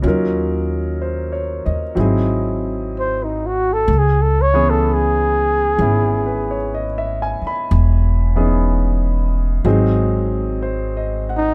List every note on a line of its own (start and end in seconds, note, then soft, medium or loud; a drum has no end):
0.02 1.62 D#2 medium
0.02 1.93 F#3 medium
0.02 1.96 C#4 soft
0.02 1.96 D#4 soft
0.02 1.97 F4 soft
0.08 1.98 A#4 medium
1.02 1.62 C5 soft
1.32 1.82 C#5 soft
1.65 1.94 D#2 medium
1.65 2.15 D#5 medium
1.95 3.84 G#1 medium
1.95 3.87 F#3 medium
1.95 3.87 C4 soft
1.95 3.88 D#4 soft
1.95 3.89 E4 soft
2.00 3.89 G#4 medium
2.99 3.26 C5 medium
3.24 3.48 D#4 medium
3.46 3.74 F#4 medium
3.73 4.00 A4 medium
3.88 5.75 C#2 medium
3.98 4.23 G#4 medium
4.22 4.43 A4 medium
4.41 4.71 C#5 loud
4.54 7.71 E3 medium
4.54 5.77 B3 medium
4.54 5.78 C#4 medium
4.54 7.72 G#4 medium
4.70 4.95 A4 medium
4.93 6.80 G#4 medium
5.78 7.36 G#1 medium
5.78 7.70 B3 soft
5.78 7.71 C#4 soft
5.78 7.72 E4 medium
6.26 6.56 B4 soft
6.51 6.84 C#5 soft
6.74 7.20 D#5 medium
6.98 7.40 E5 medium
7.22 7.52 G#5 medium
7.42 muted upright bass stroke soft
7.47 7.81 B5 medium
7.71 9.61 E1 medium
8.35 9.64 E3 medium
8.35 9.65 B3 medium
8.35 9.65 C#4 medium
8.35 9.64 D#4 soft
8.35 9.64 G#4 medium
9.65 11.54 G#1 medium
9.65 11.54 F#3 medium
9.65 11.54 G#3 medium
9.65 11.54 C4 medium
9.65 11.54 D#4 medium
9.65 11.54 G#4 medium
10.63 11.26 C5 soft
10.97 11.47 D#5 soft
11.29 11.54 F#5 medium
11.36 11.54 D#4 medium